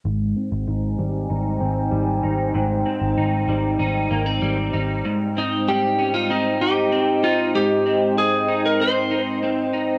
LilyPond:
<<
  \new Staff \with { instrumentName = "Ambient pad" } { \time 4/4 \key aes \major \tempo 4 = 96 << { aes''1 | bes''1 | ees''1~ | ees''1 | } \\ { <ees' c'' g''>1~ | <ees' c'' g''>1 | <ees' c'' g''>1~ | <ees' c'' g''>1 | } >> }
  \new Staff \with { instrumentName = "Electric slide guitar" } { \time 4/4 \key aes \major r1 | r1 | r8 ees'8 g'8. f'16 ees'8 g'4 f'8 | g'4 aes'8. bes'16 c''4 r4 | }
  \new Staff \with { instrumentName = "Clean electric guitar" } { \time 4/4 \key aes \major aes,8 c'8 ees'8 g8 ees'8 c'8 g8 ees'8 | aes,8 c'8 ees'8 g8 ees'8 bes16 c'16 g8 ees'8 | aes,8 c'8 g8 des'16 ees'16 c'8 ees'8 c'8 ees'8 | aes,8 c'4 ees'8 c'8 ees'8 c'8 ees'8 | }
  \new Staff \with { instrumentName = "Picked electric bass" } { \clef bass \time 4/4 \key aes \major aes,,8 r16 aes,,16 aes,,8 aes,,8 aes,,8 aes,,8 aes,,8 aes,,8 | aes,,8 r16 aes,,16 aes,,8 aes,,8 aes,,8 aes,,8 aes,,8 aes,,8 | r1 | r1 | }
>>